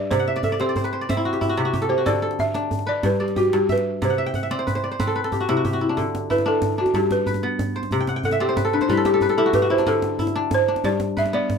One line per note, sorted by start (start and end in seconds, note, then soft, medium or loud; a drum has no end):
0.00 0.16 G2 medium
0.00 0.33 D4 medium
0.00 0.25 G4 medium
0.00 0.17 B4 medium
0.00 0.11 D5 medium
0.00 0.36 D5 medium
0.00 0.27 E5 medium
0.11 1.56 C3 medium
0.11 0.41 C5 medium
0.11 djembe slap medium
0.11 djembe tone medium
0.11 djembe bass medium
0.19 1.16 F#5 medium
0.28 0.43 E5 medium
0.36 0.52 D5 medium
0.36 djembe slap medium
0.43 0.61 A4 medium
0.43 1.09 E5 medium
0.43 djembe slap soft
0.43 djembe tone medium
0.43 djembe bass medium
0.52 0.69 D5 medium
0.60 1.09 C4 medium
0.60 1.21 G4 medium
0.60 0.76 C5 medium
0.60 djembe slap medium
0.69 1.01 D5 medium
0.76 0.92 C5 medium
0.76 djembe tone medium
0.76 djembe bass medium
0.84 1.15 B4 medium
0.84 djembe slap medium
0.93 2.11 C5 medium
1.01 2.12 D5 medium
1.09 2.93 C4 medium
1.09 2.13 E5 medium
1.09 djembe slap medium
1.09 djembe tone medium
1.09 djembe bass medium
1.17 1.41 E4 medium
1.25 1.49 F#4 medium
1.33 1.55 G4 medium
1.33 djembe slap soft
1.41 2.98 E4 medium
1.41 djembe tone medium
1.41 djembe bass medium
1.49 1.65 F#4 medium
1.49 djembe slap soft
1.57 2.11 C3 medium
1.57 1.73 G4 medium
1.57 djembe slap medium
1.65 1.96 F#4 medium
1.73 1.89 G4 medium
1.73 djembe tone medium
1.73 djembe bass medium
1.82 2.06 A4 medium
1.82 djembe slap medium
1.89 3.31 G4 medium
1.89 2.06 C5 medium
1.98 3.09 F#4 medium
2.06 3.09 D3 medium
2.06 2.22 A4 medium
2.06 2.40 D5 medium
2.06 djembe slap medium
2.06 djembe tone medium
2.06 djembe bass medium
2.22 3.54 A4 medium
2.31 djembe slap medium
2.39 2.90 E5 loud
2.39 djembe slap soft
2.39 djembe tone medium
2.39 djembe bass medium
2.54 4.22 D4 medium
2.54 djembe slap medium
2.71 djembe tone medium
2.71 djembe bass medium
2.79 djembe slap medium
2.87 4.08 B4 medium
2.87 3.05 D5 medium
3.03 3.52 G2 medium
3.03 3.22 B4 medium
3.03 djembe slap medium
3.03 djembe tone medium
3.03 djembe bass medium
3.20 3.36 G4 medium
3.20 4.31 D5 medium
3.28 djembe slap medium
3.36 3.54 F#4 medium
3.36 4.16 G4 medium
3.36 djembe tone medium
3.36 djembe bass medium
3.45 djembe slap soft
3.53 4.07 G2 medium
3.53 3.70 G4 medium
3.53 djembe slap medium
3.69 4.04 B4 medium
3.69 4.18 E5 medium
3.69 djembe tone medium
3.69 djembe bass medium
3.78 djembe slap medium
4.02 5.48 C3 medium
4.02 4.37 C5 medium
4.02 djembe slap medium
4.02 djembe tone medium
4.02 djembe bass medium
4.10 4.32 F#5 medium
4.18 4.43 E5 medium
4.26 5.20 G5 medium
4.26 djembe slap medium
4.34 5.31 F#5 medium
4.34 djembe tone medium
4.34 djembe bass medium
4.43 5.46 E5 medium
4.51 4.99 C4 medium
4.51 4.83 D5 medium
4.51 djembe slap medium
4.59 4.75 C5 medium
4.67 4.97 B4 medium
4.67 djembe slap soft
4.67 djembe tone medium
4.67 djembe bass medium
4.75 4.91 C5 medium
4.75 djembe slap medium
4.84 5.94 D5 medium
4.91 5.22 C5 medium
5.00 6.80 C4 medium
5.00 5.15 B4 medium
5.00 djembe slap medium
5.00 djembe tone medium
5.00 djembe bass medium
5.07 5.24 A4 medium
5.16 5.55 B4 medium
5.24 6.56 A4 medium
5.24 djembe slap medium
5.32 5.63 G4 medium
5.32 djembe tone medium
5.32 djembe bass medium
5.40 5.56 F#4 medium
5.49 6.02 C3 medium
5.49 5.81 E4 medium
5.49 djembe slap medium
5.56 5.73 F#4 medium
5.56 djembe slap soft
5.65 7.06 G4 medium
5.65 djembe tone medium
5.65 djembe bass medium
5.73 7.01 F#4 medium
5.73 djembe slap medium
5.81 6.30 E4 medium
5.89 6.45 D4 medium
5.97 6.99 D3 medium
5.97 djembe bass medium
6.15 djembe slap medium
6.15 djembe tone medium
6.30 7.87 E4 medium
6.30 6.45 B4 loud
6.30 djembe bass medium
6.38 djembe slap medium
6.38 djembe tone medium
6.46 6.78 D4 medium
6.46 6.77 A4 loud
6.46 djembe slap soft
6.62 djembe slap medium
6.62 djembe tone medium
6.62 djembe bass medium
6.78 8.46 D4 medium
6.78 6.96 F#4 medium
6.86 djembe slap soft
6.86 djembe tone medium
6.94 7.97 G2 medium
6.94 7.12 G4 medium
6.94 djembe bass medium
7.11 7.26 B4 medium
7.11 djembe slap medium
7.11 djembe tone medium
7.20 djembe slap soft
7.26 7.82 B4 medium
7.26 djembe bass medium
7.34 djembe slap medium
7.34 djembe tone medium
7.43 7.82 B3 medium
7.59 djembe slap medium
7.59 djembe tone medium
7.59 djembe bass medium
7.76 8.48 C5 medium
7.76 djembe slap soft
7.83 djembe slap medium
7.83 djembe tone medium
7.91 9.92 C3 medium
7.91 djembe bass medium
8.00 8.16 G5 medium
8.07 8.25 F#5 medium
8.07 djembe slap medium
8.07 djembe tone medium
8.16 9.09 G5 medium
8.23 8.40 A4 medium
8.23 8.96 F#5 medium
8.23 djembe bass medium
8.31 9.36 E5 medium
8.31 djembe slap medium
8.31 djembe tone medium
8.40 8.79 C4 medium
8.40 8.74 G4 medium
8.40 9.51 D5 medium
8.40 djembe slap soft
8.49 8.79 C5 medium
8.57 8.73 B4 medium
8.57 djembe slap medium
8.57 djembe tone medium
8.57 djembe bass medium
8.65 8.97 A4 medium
8.73 8.90 D4 medium
8.73 8.89 B4 medium
8.81 9.28 C5 medium
8.81 djembe slap medium
8.81 djembe tone medium
8.88 9.92 G3 medium
8.88 9.04 E4 medium
8.88 9.22 B4 medium
8.88 djembe bass medium
8.97 9.13 A4 medium
9.05 9.20 G4 medium
9.05 9.38 G4 medium
9.05 djembe slap medium
9.05 djembe tone medium
9.13 9.29 A4 medium
9.13 djembe slap soft
9.21 10.45 B4 medium
9.21 djembe bass medium
9.29 10.61 A4 medium
9.29 djembe slap medium
9.29 djembe tone medium
9.38 9.70 E4 medium
9.38 9.53 G4 medium
9.38 9.53 A4 medium
9.46 9.62 F#4 medium
9.53 10.95 G4 medium
9.53 9.71 B4 medium
9.53 djembe slap medium
9.53 djembe tone medium
9.53 djembe bass medium
9.62 10.90 F#4 medium
9.70 10.19 E4 medium
9.70 9.78 C5 medium
9.70 djembe slap soft
9.78 10.35 D4 medium
9.78 djembe slap medium
9.78 djembe tone medium
9.86 10.89 D3 medium
9.86 10.33 A4 medium
9.86 djembe bass medium
10.02 djembe slap medium
10.02 djembe tone medium
10.19 11.58 E4 medium
10.19 djembe bass medium
10.27 djembe slap medium
10.27 djembe tone medium
10.36 10.68 D4 medium
10.51 10.87 C5 medium
10.51 djembe slap medium
10.51 djembe tone medium
10.51 djembe bass medium
10.68 11.58 D4 medium
10.76 djembe slap medium
10.76 djembe tone medium
10.84 11.58 G2 medium
10.84 11.18 D5 medium
10.84 djembe bass medium
11.00 djembe slap medium
11.00 djembe tone medium
11.08 djembe slap soft
11.17 11.58 B4 medium
11.17 11.33 E5 loud
11.17 djembe bass medium
11.26 djembe slap medium
11.26 djembe tone medium
11.33 11.58 B3 medium
11.33 11.58 D5 loud
11.50 djembe slap medium
11.50 djembe bass medium